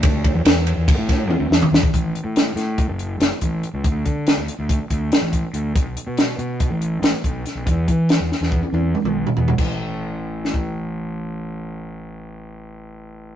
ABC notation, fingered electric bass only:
X:1
M:9/8
L:1/16
Q:3/8=94
K:Emix
V:1 name="Fingered electric bass" clef=bass
D,,3 E,, E,,3 E,, D,, A,,3 E,, D,, E,, z E,, z | A,,,2 z A,,3 A,,3 F,,,3 F,,, z A,,,2 z C,, | D,,2 D,3 D,, z D,,2 z D,,2 z A,,,2 z D,,2 | B,,,2 z B,,3 B,,3 A,,,3 A,,, z B,,,2 z B,,, |
E,,2 E,3 E,, z E,,2 z E,,2 z B,,,2 z E,,2 | A,,,16- A,,,2- | A,,,16- A,,,2 |]